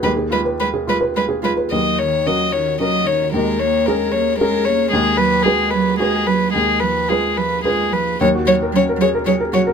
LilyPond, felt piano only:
\new Staff \with { instrumentName = "Felt piano" } { \time 3/4 \key ees \minor \tempo 4 = 112 ees,16 aes'16 f'16 ces''8 aes'16 f'16 ces''8 aes'16 f'16 ces''16 | ees,4 <des' ges' bes'>4 <des' ges' bes'>4 | ees,4 <des' aes' bes'>4 <des' aes' bes'>4 | ees,4 <ges' aes' ces''>4 <ges' aes' ces''>4 |
ees,4 <f' aes' ces''>4 <f' aes' ces''>4 | ees,16 ges'16 des''16 bes'16 des'16 bes'16 aes'16 bes'16 aes'16 bes'16 ges'16 bes'16 | }